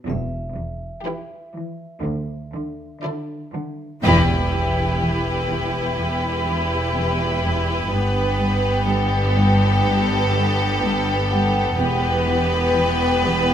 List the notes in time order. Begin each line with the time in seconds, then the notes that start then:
0.07 E1 E2 E5
0.56 E2
1.05 E3 E4 G4 B4
1.55 E3
2.04 D2 D3
2.55 D3
3.04 D3 E4 A4 D5
3.54 D3
4.04 E1 E2 E4 G4 B4, impact
4.52 E3 G4 G5
5.01 E3
5.49 E2
5.98 E2
6.47 E3 B5
6.96 E2
7.45 E2
7.93 G1 G2 B3 G4
8.41 G3
8.89 G3 A4 G5
9.37 G2
9.86 G2
10.34 G3
10.82 G2
11.31 G2 F#5
11.78 E1 E2 B3 G4 B4
12.27 E3
12.76 E3
13.24 E2